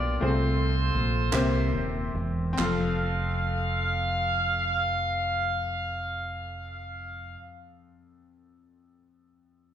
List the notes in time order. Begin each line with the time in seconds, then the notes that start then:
Already playing: B1 A#2 A#3 C4 D4 F4 G4 A#4 D5
0.20 C2 C3 A3 C4 F4 G#4 C5
0.24 F4 A4
0.95 A#1
1.32 C2 C3 A#3 C4 G4 C5 E5, clap
1.73 D#1
2.14 E1
2.53 C4
2.58 F1 F2 F4 F5, clap
2.63 A4